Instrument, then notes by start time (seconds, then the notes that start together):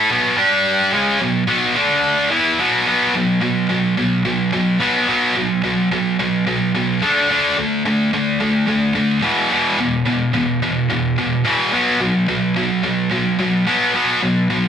distorted electric guitar
Already playing: A4
0.10 B2 F#3 B3
0.37 G3 D4 G4
0.93 C#3 G#3 C#4
1.20 B2 F#3
1.48 B2 F#3 B3
1.75 D3 A3 D4
2.30 E3 B3 E4
2.59 B2 F#3 B3
2.87 B2 F#3 B3
3.15 B2 F#3
3.42 B2 F#3
3.70 B2 F#3
3.97 B2 F#3
4.25 B2 F#3
4.52 B2 F#3
4.80 B2 F#3 B3
5.08 B2 F#3 B3
5.36 B2 F#3
5.64 B2 F#3
5.92 B2 F#3
6.19 B2 F#3
6.47 B2 F#3
6.75 B2 F#3
7.02 D3 A3 D4
7.30 D3 A3 D4
7.58 D3 A3
7.85 D3 A3
8.13 D3 A3
8.41 D3 A3
8.68 D3 A3
8.95 D3 A3
9.22 E2 B2 E3
9.50 E2 B2 E3
9.79 E2 B2
10.06 E2 B2
10.34 E2 B2
10.62 E2 B2
10.90 E2 B2
11.18 E2 B2
11.45 E2 B2 E3
11.72 B2 F#3 B3
12.00 B2 F#3
12.28 B2 F#3
12.56 B2 F#3
12.84 B2 F#3
13.12 B2 F#3
13.39 B2 F#3
13.67 B2 F#3 B3
13.94 B2 F#3 B3
14.22 B2 F#3
14.50 B2 F#3